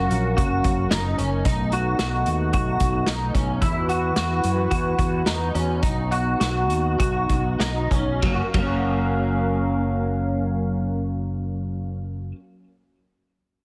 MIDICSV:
0, 0, Header, 1, 5, 480
1, 0, Start_track
1, 0, Key_signature, 6, "major"
1, 0, Tempo, 541516
1, 1292, Time_signature, 4, 2, 24, 8
1, 4175, Tempo, 563910
1, 5615, Tempo, 607287
1, 7055, Tempo, 635593
1, 11145, End_track
2, 0, Start_track
2, 0, Title_t, "Analog synth pad"
2, 0, Program_c, 0, 89
2, 0, Note_on_c, 0, 54, 81
2, 0, Note_on_c, 0, 61, 75
2, 0, Note_on_c, 0, 70, 81
2, 0, Note_on_c, 0, 77, 68
2, 1268, Note_off_c, 0, 61, 0
2, 1268, Note_off_c, 0, 70, 0
2, 1268, Note_off_c, 0, 77, 0
2, 1271, Note_off_c, 0, 54, 0
2, 1288, Note_on_c, 0, 59, 70
2, 1288, Note_on_c, 0, 63, 82
2, 1291, Note_on_c, 0, 57, 76
2, 3188, Note_off_c, 0, 59, 0
2, 3188, Note_off_c, 0, 63, 0
2, 3189, Note_off_c, 0, 57, 0
2, 3211, Note_on_c, 0, 66, 65
2, 3213, Note_on_c, 0, 52, 78
2, 3214, Note_on_c, 0, 64, 75
2, 3215, Note_on_c, 0, 71, 90
2, 5108, Note_off_c, 0, 52, 0
2, 5108, Note_off_c, 0, 64, 0
2, 5109, Note_off_c, 0, 71, 0
2, 5119, Note_on_c, 0, 59, 73
2, 5123, Note_on_c, 0, 63, 64
2, 7023, Note_off_c, 0, 66, 0
2, 7032, Note_off_c, 0, 59, 0
2, 7034, Note_off_c, 0, 63, 0
2, 7045, Note_on_c, 0, 70, 78
2, 7046, Note_on_c, 0, 61, 67
2, 7047, Note_on_c, 0, 77, 65
2, 7048, Note_on_c, 0, 54, 75
2, 9892, Note_off_c, 0, 70, 0
2, 9893, Note_off_c, 0, 61, 0
2, 9894, Note_off_c, 0, 77, 0
2, 9896, Note_off_c, 0, 54, 0
2, 11145, End_track
3, 0, Start_track
3, 0, Title_t, "Clean electric guitar"
3, 0, Program_c, 1, 27
3, 0, Note_on_c, 1, 66, 67
3, 315, Note_off_c, 1, 66, 0
3, 326, Note_on_c, 1, 66, 77
3, 804, Note_on_c, 1, 63, 76
3, 809, Note_off_c, 1, 66, 0
3, 1044, Note_off_c, 1, 63, 0
3, 1048, Note_on_c, 1, 61, 74
3, 1284, Note_off_c, 1, 61, 0
3, 1287, Note_on_c, 1, 63, 73
3, 1529, Note_off_c, 1, 63, 0
3, 1530, Note_on_c, 1, 66, 73
3, 1753, Note_off_c, 1, 66, 0
3, 1764, Note_on_c, 1, 66, 69
3, 2236, Note_off_c, 1, 66, 0
3, 2246, Note_on_c, 1, 66, 74
3, 2727, Note_on_c, 1, 63, 78
3, 2728, Note_off_c, 1, 66, 0
3, 2960, Note_off_c, 1, 63, 0
3, 2963, Note_on_c, 1, 61, 65
3, 3205, Note_on_c, 1, 64, 72
3, 3206, Note_off_c, 1, 61, 0
3, 3444, Note_off_c, 1, 64, 0
3, 3447, Note_on_c, 1, 66, 70
3, 3677, Note_off_c, 1, 66, 0
3, 3688, Note_on_c, 1, 66, 72
3, 4163, Note_off_c, 1, 66, 0
3, 4174, Note_on_c, 1, 66, 79
3, 4645, Note_off_c, 1, 66, 0
3, 4648, Note_on_c, 1, 63, 82
3, 4883, Note_off_c, 1, 63, 0
3, 4886, Note_on_c, 1, 61, 69
3, 5121, Note_off_c, 1, 61, 0
3, 5124, Note_on_c, 1, 63, 71
3, 5368, Note_off_c, 1, 63, 0
3, 5370, Note_on_c, 1, 66, 72
3, 5604, Note_off_c, 1, 66, 0
3, 5615, Note_on_c, 1, 66, 67
3, 6075, Note_off_c, 1, 66, 0
3, 6084, Note_on_c, 1, 66, 75
3, 6559, Note_on_c, 1, 63, 76
3, 6561, Note_off_c, 1, 66, 0
3, 6803, Note_off_c, 1, 63, 0
3, 6806, Note_on_c, 1, 61, 61
3, 7054, Note_off_c, 1, 61, 0
3, 7056, Note_on_c, 1, 54, 52
3, 7085, Note_on_c, 1, 58, 52
3, 7116, Note_on_c, 1, 61, 48
3, 7147, Note_on_c, 1, 66, 50
3, 7189, Note_off_c, 1, 54, 0
3, 7204, Note_off_c, 1, 58, 0
3, 7221, Note_off_c, 1, 61, 0
3, 7237, Note_off_c, 1, 66, 0
3, 7295, Note_on_c, 1, 54, 51
3, 7325, Note_on_c, 1, 58, 59
3, 7356, Note_on_c, 1, 61, 61
3, 7386, Note_on_c, 1, 66, 53
3, 10142, Note_off_c, 1, 54, 0
3, 10172, Note_off_c, 1, 58, 0
3, 10203, Note_off_c, 1, 61, 0
3, 10233, Note_off_c, 1, 66, 0
3, 11145, End_track
4, 0, Start_track
4, 0, Title_t, "Fretless electric bass"
4, 0, Program_c, 2, 35
4, 88, Note_on_c, 2, 34, 78
4, 302, Note_off_c, 2, 34, 0
4, 334, Note_on_c, 2, 30, 93
4, 545, Note_off_c, 2, 30, 0
4, 571, Note_on_c, 2, 30, 81
4, 783, Note_off_c, 2, 30, 0
4, 803, Note_on_c, 2, 30, 86
4, 1019, Note_off_c, 2, 30, 0
4, 1045, Note_on_c, 2, 30, 85
4, 1259, Note_off_c, 2, 30, 0
4, 1288, Note_on_c, 2, 35, 93
4, 1712, Note_off_c, 2, 35, 0
4, 1765, Note_on_c, 2, 35, 73
4, 1979, Note_off_c, 2, 35, 0
4, 2006, Note_on_c, 2, 39, 73
4, 2219, Note_off_c, 2, 39, 0
4, 2248, Note_on_c, 2, 35, 92
4, 2460, Note_off_c, 2, 35, 0
4, 2487, Note_on_c, 2, 35, 90
4, 2699, Note_off_c, 2, 35, 0
4, 2728, Note_on_c, 2, 35, 66
4, 2940, Note_off_c, 2, 35, 0
4, 2965, Note_on_c, 2, 35, 87
4, 3178, Note_off_c, 2, 35, 0
4, 3207, Note_on_c, 2, 40, 88
4, 3631, Note_off_c, 2, 40, 0
4, 3692, Note_on_c, 2, 40, 74
4, 3903, Note_off_c, 2, 40, 0
4, 3934, Note_on_c, 2, 42, 67
4, 4146, Note_off_c, 2, 42, 0
4, 4176, Note_on_c, 2, 40, 92
4, 4382, Note_off_c, 2, 40, 0
4, 4408, Note_on_c, 2, 40, 83
4, 4616, Note_off_c, 2, 40, 0
4, 4649, Note_on_c, 2, 40, 73
4, 4857, Note_off_c, 2, 40, 0
4, 4886, Note_on_c, 2, 40, 83
4, 5097, Note_off_c, 2, 40, 0
4, 5125, Note_on_c, 2, 35, 85
4, 5556, Note_off_c, 2, 35, 0
4, 5615, Note_on_c, 2, 35, 77
4, 5849, Note_off_c, 2, 35, 0
4, 5849, Note_on_c, 2, 39, 70
4, 6054, Note_off_c, 2, 39, 0
4, 6085, Note_on_c, 2, 35, 89
4, 6292, Note_off_c, 2, 35, 0
4, 6321, Note_on_c, 2, 35, 76
4, 6532, Note_off_c, 2, 35, 0
4, 6557, Note_on_c, 2, 35, 76
4, 6773, Note_off_c, 2, 35, 0
4, 6806, Note_on_c, 2, 35, 73
4, 7025, Note_off_c, 2, 35, 0
4, 7055, Note_on_c, 2, 30, 82
4, 7188, Note_off_c, 2, 30, 0
4, 7295, Note_on_c, 2, 30, 83
4, 10142, Note_off_c, 2, 30, 0
4, 11145, End_track
5, 0, Start_track
5, 0, Title_t, "Drums"
5, 95, Note_on_c, 9, 42, 53
5, 184, Note_off_c, 9, 42, 0
5, 335, Note_on_c, 9, 36, 83
5, 335, Note_on_c, 9, 42, 54
5, 424, Note_off_c, 9, 36, 0
5, 424, Note_off_c, 9, 42, 0
5, 569, Note_on_c, 9, 42, 44
5, 571, Note_on_c, 9, 36, 74
5, 658, Note_off_c, 9, 42, 0
5, 660, Note_off_c, 9, 36, 0
5, 806, Note_on_c, 9, 38, 104
5, 813, Note_on_c, 9, 42, 69
5, 895, Note_off_c, 9, 38, 0
5, 902, Note_off_c, 9, 42, 0
5, 1051, Note_on_c, 9, 42, 43
5, 1140, Note_off_c, 9, 42, 0
5, 1285, Note_on_c, 9, 42, 57
5, 1288, Note_on_c, 9, 36, 85
5, 1374, Note_off_c, 9, 42, 0
5, 1377, Note_off_c, 9, 36, 0
5, 1524, Note_on_c, 9, 42, 43
5, 1613, Note_off_c, 9, 42, 0
5, 1764, Note_on_c, 9, 38, 96
5, 1765, Note_on_c, 9, 42, 65
5, 1852, Note_off_c, 9, 38, 0
5, 1854, Note_off_c, 9, 42, 0
5, 2003, Note_on_c, 9, 42, 55
5, 2092, Note_off_c, 9, 42, 0
5, 2244, Note_on_c, 9, 42, 59
5, 2249, Note_on_c, 9, 36, 76
5, 2333, Note_off_c, 9, 42, 0
5, 2337, Note_off_c, 9, 36, 0
5, 2481, Note_on_c, 9, 42, 48
5, 2486, Note_on_c, 9, 36, 86
5, 2569, Note_off_c, 9, 42, 0
5, 2575, Note_off_c, 9, 36, 0
5, 2717, Note_on_c, 9, 38, 98
5, 2723, Note_on_c, 9, 42, 69
5, 2806, Note_off_c, 9, 38, 0
5, 2812, Note_off_c, 9, 42, 0
5, 2966, Note_on_c, 9, 36, 74
5, 2966, Note_on_c, 9, 42, 44
5, 3054, Note_off_c, 9, 42, 0
5, 3055, Note_off_c, 9, 36, 0
5, 3206, Note_on_c, 9, 42, 57
5, 3207, Note_on_c, 9, 36, 84
5, 3295, Note_off_c, 9, 42, 0
5, 3296, Note_off_c, 9, 36, 0
5, 3451, Note_on_c, 9, 42, 44
5, 3539, Note_off_c, 9, 42, 0
5, 3688, Note_on_c, 9, 38, 94
5, 3690, Note_on_c, 9, 42, 63
5, 3777, Note_off_c, 9, 38, 0
5, 3779, Note_off_c, 9, 42, 0
5, 3932, Note_on_c, 9, 42, 56
5, 4020, Note_off_c, 9, 42, 0
5, 4178, Note_on_c, 9, 36, 68
5, 4178, Note_on_c, 9, 42, 55
5, 4263, Note_off_c, 9, 36, 0
5, 4263, Note_off_c, 9, 42, 0
5, 4410, Note_on_c, 9, 36, 83
5, 4410, Note_on_c, 9, 42, 41
5, 4495, Note_off_c, 9, 36, 0
5, 4495, Note_off_c, 9, 42, 0
5, 4644, Note_on_c, 9, 38, 101
5, 4650, Note_on_c, 9, 42, 59
5, 4729, Note_off_c, 9, 38, 0
5, 4735, Note_off_c, 9, 42, 0
5, 4891, Note_on_c, 9, 42, 44
5, 4977, Note_off_c, 9, 42, 0
5, 5125, Note_on_c, 9, 42, 53
5, 5127, Note_on_c, 9, 36, 90
5, 5210, Note_off_c, 9, 42, 0
5, 5212, Note_off_c, 9, 36, 0
5, 5373, Note_on_c, 9, 42, 40
5, 5458, Note_off_c, 9, 42, 0
5, 5620, Note_on_c, 9, 38, 88
5, 5621, Note_on_c, 9, 42, 69
5, 5699, Note_off_c, 9, 38, 0
5, 5700, Note_off_c, 9, 42, 0
5, 5850, Note_on_c, 9, 42, 48
5, 5929, Note_off_c, 9, 42, 0
5, 6086, Note_on_c, 9, 36, 78
5, 6086, Note_on_c, 9, 42, 59
5, 6165, Note_off_c, 9, 36, 0
5, 6165, Note_off_c, 9, 42, 0
5, 6320, Note_on_c, 9, 42, 42
5, 6322, Note_on_c, 9, 36, 77
5, 6399, Note_off_c, 9, 42, 0
5, 6401, Note_off_c, 9, 36, 0
5, 6563, Note_on_c, 9, 38, 102
5, 6568, Note_on_c, 9, 42, 60
5, 6642, Note_off_c, 9, 38, 0
5, 6647, Note_off_c, 9, 42, 0
5, 6807, Note_on_c, 9, 36, 76
5, 6812, Note_on_c, 9, 42, 39
5, 6886, Note_off_c, 9, 36, 0
5, 6891, Note_off_c, 9, 42, 0
5, 7055, Note_on_c, 9, 36, 84
5, 7056, Note_on_c, 9, 51, 68
5, 7131, Note_off_c, 9, 36, 0
5, 7131, Note_off_c, 9, 51, 0
5, 7294, Note_on_c, 9, 51, 72
5, 7295, Note_on_c, 9, 36, 86
5, 7370, Note_off_c, 9, 36, 0
5, 7370, Note_off_c, 9, 51, 0
5, 11145, End_track
0, 0, End_of_file